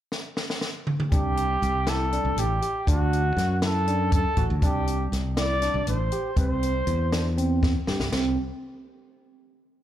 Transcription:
0.12 snare
0.37 snare
0.50 snare
0.61 snare
0.87 mid tom
1.00 mid tom
1.12 fingered electric bass C2, tine electric piano D4, trumpet G4, kick, closed hi-hat
1.37 closed hi-hat
1.62 fingered electric bass C2, closed hi-hat
1.87 tine electric piano E4, trumpet A4, snare, closed hi-hat
2.12 tine electric piano D4, closed hi-hat
2.25 fingered electric bass C2
2.37 fingered electric bass A1, trumpet G4, closed hi-hat
2.62 tine electric piano G4, closed hi-hat
2.87 fingered electric bass D2, tine electric piano D4, trumpet F#4, kick, closed hi-hat
3.13 closed hi-hat
3.37 fingered electric bass F#2, snare, closed hi-hat
3.62 tine electric piano E4, trumpet A4, snare, closed hi-hat
3.87 tine electric piano D4, closed hi-hat
4.12 trumpet A4, kick, closed hi-hat
4.37 fingered electric bass A1, tine electric piano F#4, kick, closed hi-hat
4.50 fingered electric bass D2
4.62 fingered electric bass C2, tine electric piano D4, trumpet G4, kick, closed hi-hat
4.87 closed hi-hat
5.12 fingered electric bass C2, snare, closed hi-hat
5.37 tine electric piano E4, trumpet D5, snare, closed hi-hat
5.62 tine electric piano D4, snare, closed hi-hat
5.74 fingered electric bass C2
5.87 fingered electric bass A1, trumpet C5, closed hi-hat
6.12 tine electric piano G4, closed hi-hat
6.36 fingered electric bass C2, tine electric piano C4, trumpet C5, kick, closed hi-hat
6.63 closed hi-hat
6.87 fingered electric bass E2, closed hi-hat
7.12 tine electric piano D4, snare, closed hi-hat
7.38 tine electric piano C4, closed hi-hat
7.63 kick, snare
7.87 fingered electric bass G2, tine electric piano G4, snare
8.00 fingered electric bass C2, snare
8.12 fingered electric bass C2, tine electric piano C4, snare, crash

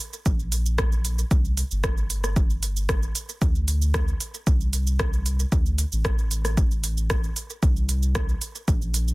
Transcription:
0.13 shaker
0.26 sub bass A#1, kick, shaker
0.40 shaker
0.52 open hi-hat, shaker
0.66 shaker
0.78 kick, cross-stick, shaker
0.92 shaker
1.05 open hi-hat, shaker
1.18 shaker
1.31 sub bass C2, kick, shaker
1.45 shaker
1.57 open hi-hat, shaker
1.71 sub bass G1, shaker
1.84 kick, cross-stick, shaker
1.98 shaker
2.10 open hi-hat, shaker
2.24 cross-stick, shaker
2.36 kick, shaker
2.50 shaker
2.63 open hi-hat, shaker
2.76 shaker
2.89 kick, cross-stick, shaker
3.03 shaker
3.15 open hi-hat, shaker
3.29 shaker
3.42 sub bass D2, kick, shaker
3.55 shaker
3.68 open hi-hat, shaker
3.82 shaker
3.94 kick, cross-stick, shaker
4.08 shaker
4.21 open hi-hat, shaker
4.34 shaker
4.47 sub bass C2, kick, shaker
4.61 shaker
4.73 open hi-hat, shaker
4.87 shaker
5.00 kick, cross-stick, shaker
5.13 shaker
5.26 open hi-hat, shaker
5.40 shaker
5.52 sub bass D2, kick, shaker
5.66 shaker
5.78 open hi-hat, shaker
5.92 sub bass A1, shaker
6.05 kick, cross-stick, shaker
6.19 shaker
6.31 open hi-hat, shaker
6.45 cross-stick, open hi-hat, shaker
6.57 kick, shaker
6.71 shaker
6.84 open hi-hat, shaker
6.97 shaker
7.10 kick, cross-stick, shaker
7.24 shaker
7.36 open hi-hat, shaker
7.50 shaker
7.63 sub bass C2, kick, shaker
7.76 shaker
7.89 open hi-hat, shaker
8.03 shaker
8.15 kick, cross-stick, shaker
8.29 shaker
8.41 open hi-hat, shaker
8.55 shaker
8.68 sub bass A#1, kick, shaker
8.82 shaker
8.94 open hi-hat, shaker
9.08 shaker

